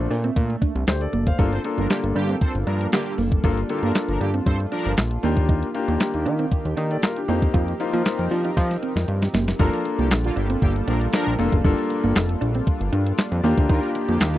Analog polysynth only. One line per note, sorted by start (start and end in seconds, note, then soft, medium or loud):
1.52 1.62 C4 medium
1.52 1.62 A4 medium
1.52 1.62 C5 medium
1.78 1.88 F3 medium
1.78 1.88 D4 medium
1.78 1.88 A#4 medium
1.90 2.01 D3 medium
1.90 2.01 A#3 loud
1.90 2.01 G4 loud
2.15 2.36 D3 loud
2.15 2.36 A#3 loud
2.15 2.36 G4 loud
2.41 2.52 C4 medium
2.41 2.52 A4 loud
2.41 2.52 C5 loud
2.66 2.87 F3 loud
2.66 2.87 D4 medium
2.66 2.87 A#4 loud
2.92 3.13 D3 loud
2.92 3.13 A#3 loud
2.92 3.13 G4 loud
3.69 3.80 D3 medium
3.69 3.80 A#3 loud
3.69 3.80 G4 medium
3.83 3.93 F3 medium
3.83 3.93 D4 medium
3.83 3.93 A#4 loud
4.09 4.18 F3 medium
4.09 4.18 D4 medium
4.09 4.18 A#4 loud
4.20 4.32 D3 medium
4.20 4.31 A#3 medium
4.20 4.31 G4 loud
4.46 4.57 C4 medium
4.46 4.57 A4 medium
4.46 4.57 C5 loud
4.72 4.93 F3 loud
4.72 4.92 D4 loud
4.72 4.92 A#4 loud
9.59 9.80 F3 loud
9.59 9.80 D4 loud
9.59 9.80 A#4 loud
9.99 10.08 D3 medium
9.99 10.09 A#3 medium
9.99 10.08 G4 loud
10.25 10.34 D3 medium
10.25 10.34 A#3 medium
10.25 10.34 F4 loud
10.37 10.47 D3 medium
10.37 10.47 A#3 loud
10.37 10.47 G4 medium
10.62 10.73 D3 loud
10.62 10.73 A#3 loud
10.62 10.73 G4 loud
10.88 11.08 F3 loud
10.88 11.08 D4 loud
10.88 11.08 A#4 loud
11.14 11.34 F3 loud
11.14 11.34 D4 loud
11.14 11.34 A#4 loud
13.69 13.90 G3 medium
13.69 13.90 F4 loud
13.69 13.90 A#4 loud
14.09 14.18 D3 medium
14.09 14.18 A#3 medium
14.09 14.18 G4 loud
14.35 14.38 D3 medium
14.35 14.38 A#3 loud
14.35 14.38 F4 loud